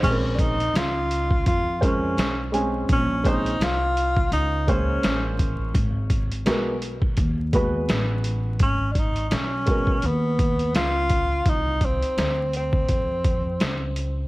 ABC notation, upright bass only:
X:1
M:4/4
L:1/16
Q:"Swing 16ths" 1/4=84
K:Bbmix
V:1 name="Upright bass" clef=bass
B,,,4 _D,,4 F,,4 =B,,,4 | B,,,4 C,,4 _D,,4 =A,,,4 | A,,,4 _C,,4 E,,4 =A,,,4 | A,,,4 _C,,4 E,,4 _D,,4 |
C,,3 z D,,4 F,,4 _D,,4 |]